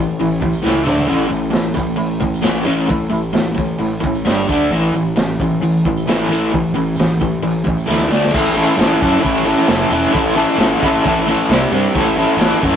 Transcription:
Already playing: A1 A2 E3
0.19 A1 A2 E3, open hi-hat, tambourine
0.31 tambourine
0.41 A1 A2 E3, kick, tambourine
0.53 tambourine
0.62 C#2 A2 E3 A3, tambourine
0.67 snare
0.84 D2 D3 A3 D4, mid tom, tambourine
0.98 floor tom
1.07 A1 A2 A3 C#4, open hi-hat, splash
1.11 tambourine
1.23 tambourine
1.28 A1 A2 A3
1.33 tambourine
1.45 tambourine
1.51 A2 A3, snare, open hi-hat
1.55 A1, tambourine
1.75 A1 A2 A3, kick, tambourine
1.90 tambourine
1.96 A1 A2 A3, open hi-hat
2.20 A1 A2 A3, kick
2.24 tambourine
2.34 tambourine
2.42 A1 A2 A3 C#4, snare, open hi-hat, tambourine
2.65 A1 A2 A3 C#4, tambourine
2.79 tambourine
2.87 A1 A2 A3, kick, open hi-hat
2.91 tambourine
3.01 tambourine
3.10 A1 A2 A3, tambourine
3.23 tambourine
3.33 A1 A2 A3, snare, open hi-hat, tambourine
3.55 A2 A3, kick, tambourine
3.71 tambourine
3.79 A1 A2 A3, open hi-hat
4.01 A1 A2 A3, kick, tambourine
4.14 tambourine
4.25 G1 G3 D4 G4, snare, open hi-hat, tambourine
4.48 D2 D3 A3 D4, kick, tambourine
4.71 A1 A2 E3 A3, open hi-hat, tambourine
4.84 tambourine
4.93 A1 A2 E3, tambourine
5.05 tambourine
5.16 A1 A2 E3, snare, open hi-hat, tambourine
5.39 A1 A2 E3, kick, tambourine
5.50 tambourine
5.60 A1 A2 E3, open hi-hat
5.84 A1 A2 E3, kick, tambourine
5.97 tambourine
6.06 A1 A2 E3 A3, snare, open hi-hat, tambourine
6.29 A1 A2 E3 A3, tambourine
6.43 tambourine
6.52 A1 A2 E3, kick, open hi-hat
6.74 A1 A2 E3, tambourine
6.86 tambourine
6.96 A1 A2 E3, open hi-hat, tambourine
7.00 snare
7.20 A2 E3, kick, tambourine
7.43 A1 A2 E3, open hi-hat, tambourine
7.64 A1 A2 E3, kick, tambourine
7.78 tambourine
7.86 D2 A2 E3 A3, tambourine
7.91 snare
8.01 snare, tambourine
8.08 D3 A3 D4
8.12 D2, snare, tambourine
8.25 snare, tambourine
8.32 A1 A2 A3 C#4 E4 A4, kick, crash
8.45 tambourine
8.55 A2 A3 C#4 E4 A4, open hi-hat, tambourine
8.76 A1 A2 A3 C#4 E4 A4, tambourine
8.80 snare, open hi-hat
9.00 F#2 A2 A3 C#4 E4 A4, kick, open hi-hat, tambourine
9.19 A2 A3 C#4 E4 A4
9.24 A1, kick, open hi-hat, tambourine
9.36 tambourine
9.44 A2 A3 C#4 E4 A4, open hi-hat, tambourine
9.58 tambourine
9.67 F#1 A2 A3 C#4 E4 A4, snare, open hi-hat, tambourine
9.91 E1 A2 A3 C#4 E4 A4, open hi-hat
10.11 A1 A2 A3 C#4 E4 A4, kick, open hi-hat
10.27 tambourine
10.34 A2 A3 C#4 E4 A4, open hi-hat, tambourine
10.58 A1 A2 A3 C#4 E4 A4, snare, open hi-hat, tambourine
10.82 A1 A2 A3 C#4 E4 A4, kick, open hi-hat, tambourine
10.94 tambourine
11.05 A1 A2 A3 C#4 E4 A4, kick, open hi-hat, tambourine
11.17 tambourine
11.26 A2 A3 C#4 E4 A4, open hi-hat, tambourine
11.50 C2 C3 G3 C4, snare, open hi-hat, tambourine
11.54 G4
11.72 G2 C3 G3 C4 G4, open hi-hat
11.95 A1 A2 A3 C#4 E4 A4, kick, open hi-hat
12.08 tambourine
12.16 A2 A3 C#4 E4 A4, open hi-hat, tambourine
12.37 A1 A2 A3 C#4 E4 A4, open hi-hat, tambourine
12.41 snare
12.61 F#2 A2 A3 C#4 E4 A4, kick, open hi-hat, tambourine

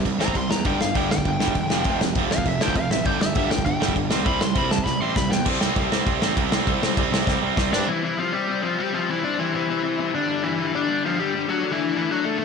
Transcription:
0.05 C2 C3 G3, kick, crash
0.19 A1 C3 G3 C4 A#5, snare
0.28 kick
0.34 C2 C3 G3 C6, kick, crash
0.49 E2 C3 G3 A#5, snare
0.64 G1 G2 D3 G3 G5, kick, crash
0.80 G1 G2 D3 F5, snare
0.94 G1 G2 D3 G3 G5, kick, crash
1.09 G1 G2 D3 G5, snare
1.18 kick
1.25 G1 G2 D3, kick, crash
1.39 G1 G2 D3 G3, snare
1.48 kick
1.54 E1 G2 D3, kick, crash
1.69 F1 F2 C3 F3, snare
1.84 F1 F2 C3 F3, kick, crash
1.99 F1 F2 C3, snare
2.15 F1 F2 C3 F3, kick, crash
2.29 F2 C3 F5, snare
2.38 kick
2.45 F1 F2 C3 E5, kick, crash
2.60 D2 F2 C3 F3 G5, snare
2.68 kick
2.75 F1 F2 C3 F5, kick, crash
2.90 A1 F2 C3 E5, snare
3.05 G1 G2 D3 G3 G5, kick, crash
3.20 G1 G2 D3 E5, snare
3.35 G1 G2 D3 G3 E5, kick, crash
3.49 G1 G2 D3 G5, snare
3.59 kick
3.66 G1 G2 D3 G5, kick, crash
3.80 G1 G2 D3 G3, snare
3.88 kick
3.96 G1 G2 D3, kick, crash
4.09 C2 C3 G3 C4, snare
4.25 C2 C3 G3 C4 B5, kick, crash
4.39 C2 C3 G3 C6, snare
4.55 C2 C3 G3 C4 B5, kick, crash
4.69 C3 G3 A5, snare
4.78 kick
4.84 C2 C3 G3 B5, kick, snare
5.00 A1 C3 G3 C4 C6
5.16 C2 C3 G3 B5, kick, snare
5.29 E2 G5, snare
5.33 C3 G3
5.46 C2 C3 G3 C4, kick, crash
5.60 C2 C3 G3 C4, snare
5.76 C2 C3 G3 C4, kick, crash
5.90 C2 C3 G3 C4, snare
6.06 C2 C3 G3 C4, kick, crash
6.20 A1 C3 G3 C4, snare
6.36 C2 C3 G3 C4, kick, crash
6.51 C2 C3 G3 C4, snare
6.67 C2 C3 G3 C4, kick, crash
6.81 C2 C3 G3 C4, snare
6.97 C2 C3 G3 C4, kick, crash
7.11 C2 C3 G3 C4, snare
7.26 C2 C3 G3 C4, kick, snare
7.41 C2 C3 G3 C4
7.56 C2 C3 G3 C4, kick, snare
7.71 G2 C3 G3 C4 D4 D5, snare
7.87 C3 E3 G3 C4 E4
8.02 C3 E3 G3 C4 E4
8.17 C3 F3 G3 C4 F4
8.32 C3 G3 C4 G4
8.47 C3 G3 C4
8.62 C3 F3 G3 C4 F4
8.78 C3 G3 C4 G4
8.93 C3 F3 G3 C4 F4
9.08 C3 E3 G3 C4 E4
9.23 C3 G3 C4 D4 D5
9.38 C3 E3 G3 C4 E4
9.53 C3 E3 G3 C4 E4
9.69 C3 G3 C4
9.83 C3 G3 C4
9.98 C3 G3 C4
10.14 G2 D3 G3 D4 D5
10.28 G2 D3 G3
10.43 G2 D3 E3 G3 E4
10.59 G2 D3 G3
10.73 G2 D3 G3 D4 D5
10.89 G2 D3 G3
11.04 G2 D3 F3 G3 F4
11.19 G2 D3 G3 G4
11.34 G2 D3 G3
11.47 D3 F#3 A3 D4 F#4
11.63 D3 A3 D4
11.72 E3 E4
11.78 D3 A3 D4
11.93 D3 E3 A3 D4 E4
12.08 D3 F#3 A3 D4 F#4
12.23 D3 A3 D4 A4
12.38 D3 A3 D4 A4

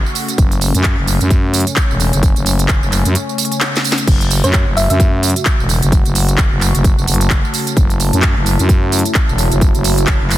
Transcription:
Already playing: C#3 A3 F#4
0.06 tambourine
0.15 open hi-hat, tambourine
0.28 closed hi-hat, tambourine
0.38 F#1 C#4, kick, closed hi-hat, tambourine
0.52 closed hi-hat, tambourine
0.61 open hi-hat, tambourine
0.75 F#2, closed hi-hat, tambourine
0.84 kick, clap, closed hi-hat, tambourine
0.98 F#1
1.07 open hi-hat, tambourine
1.21 F#2, closed hi-hat, tambourine
1.30 kick, closed hi-hat, tambourine
1.54 open hi-hat, tambourine
1.60 closed hi-hat
1.67 closed hi-hat, tambourine
1.76 kick, clap, closed hi-hat, tambourine
1.90 E1, tambourine
2.00 open hi-hat, tambourine
2.13 F#1, closed hi-hat, tambourine
2.23 kick, closed hi-hat, tambourine
2.36 F#1, closed hi-hat, tambourine
2.46 open hi-hat, tambourine
2.59 closed hi-hat, tambourine
2.68 kick, clap, closed hi-hat, tambourine
2.82 F#1, tambourine
2.92 clap, open hi-hat, tambourine
3.05 F#2, closed hi-hat, tambourine
3.15 closed hi-hat, tambourine
3.29 tambourine
3.38 open hi-hat, tambourine
3.45 closed hi-hat
3.52 closed hi-hat, tambourine
3.61 snare, clap, closed hi-hat, tambourine
3.75 snare, tambourine
3.84 open hi-hat, tambourine
3.92 snare
3.98 closed hi-hat, tambourine
4.07 F#1 F#4, kick, closed hi-hat, crash, tambourine
4.21 closed hi-hat, tambourine
4.31 C#5, open hi-hat, tambourine
4.44 F#2 C#5, closed hi-hat, tambourine
4.52 A5, kick, clap, closed hi-hat, tambourine
4.67 F#1
4.77 E5, open hi-hat, tambourine
4.90 F#2 E5, closed hi-hat, tambourine
5.00 kick, closed hi-hat, tambourine
5.23 open hi-hat, tambourine
5.30 closed hi-hat
5.36 closed hi-hat, tambourine
5.45 kick, clap, closed hi-hat, tambourine
5.59 E1, tambourine
5.69 open hi-hat, tambourine
5.82 F#1, closed hi-hat, tambourine
5.92 kick, closed hi-hat, tambourine
6.05 F#1, closed hi-hat, tambourine
6.15 open hi-hat, tambourine
6.29 closed hi-hat, tambourine
6.38 kick, clap, closed hi-hat, tambourine
6.52 F#1
6.61 clap, open hi-hat, tambourine
6.75 F#1, closed hi-hat, tambourine
6.84 kick, closed hi-hat, tambourine
6.98 F#1, tambourine
7.07 F#1, open hi-hat, tambourine
7.14 closed hi-hat
7.21 closed hi-hat, tambourine
7.30 kick, clap, closed hi-hat, tambourine
7.45 tambourine
7.54 open hi-hat, tambourine
7.67 closed hi-hat, tambourine
7.77 F#1 E4, kick, closed hi-hat, tambourine
7.90 closed hi-hat, tambourine
8.00 open hi-hat, tambourine
8.13 F#2, closed hi-hat, tambourine
8.22 kick, clap, closed hi-hat, tambourine
8.36 F#1
8.46 open hi-hat, tambourine
8.59 F#2, closed hi-hat, tambourine
8.69 kick, closed hi-hat, tambourine
8.92 open hi-hat, tambourine
8.99 closed hi-hat
9.05 closed hi-hat, tambourine
9.15 kick, clap, closed hi-hat, tambourine
9.29 E1, tambourine
9.38 open hi-hat, tambourine
9.52 F#1, closed hi-hat, tambourine
9.61 kick, closed hi-hat, tambourine
9.75 F#1, closed hi-hat, tambourine
9.84 open hi-hat, tambourine
9.98 closed hi-hat, tambourine
10.07 kick, clap, closed hi-hat, tambourine
10.21 F#1
10.30 clap, open hi-hat, tambourine

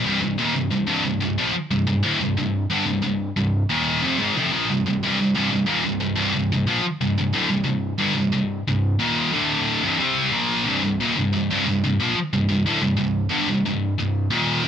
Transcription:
0.04 C2 G2
0.21 C2 G2
0.38 D#2 A#2
0.55 C2 G2
0.71 C2 G2
0.87 C2 G2
1.04 C2 G2
1.20 C2 G2
1.38 A#2 F3
1.54 muted distorted electric guitar stroke
1.71 C2 G2
1.87 C2 G2
2.03 D2 A2
2.21 C2 G2
2.37 C2 G2
2.70 G2 D3
2.86 C2 G2
3.02 C2 G2
3.36 C2 G2
3.70 D#2 A#2 D#3
4.02 F2 C3
4.19 G#2 D#3
4.37 F2 C3
4.53 A#2 F3
4.70 C2 G2
4.86 C2 G2
5.03 C2 G2
5.20 C2 G2
5.35 C2 G2
5.52 C2 G2
5.66 D#2 A#2
5.85 C2 G2
6.00 C2 G2
6.16 C2 G2
6.34 C2 G2
6.52 C2 G2
6.67 A#2 F3
6.83 muted distorted electric guitar stroke
7.01 C2 G2
7.18 C2 G2
7.33 D2 A2
7.50 C2 G2
7.64 C2 G2
7.99 G2 D3
8.15 C2 G2
8.32 C2 G2
8.68 C2 G2
8.99 D#2 A#2 D#3
9.32 D2 A2 D3
9.82 C2 G2
9.99 C3 G3 C4
10.32 A#2 F3 A#3
10.64 C2 G2
10.82 C2 G2
11.00 D#2 A#2
11.17 C2 G2
11.33 C2 G2
11.51 C2 G2
11.66 C2 G2
11.84 C2 G2
12.00 A#2 F3
12.16 muted distorted electric guitar stroke
12.33 C2 G2
12.49 C2 G2
12.66 D2 A2
12.82 C2 G2
12.97 C2 G2
13.30 G2 D3
13.49 C2 G2
13.66 C2 G2
13.98 C2 G2
14.30 D#2 A#2 D#3
14.65 F2

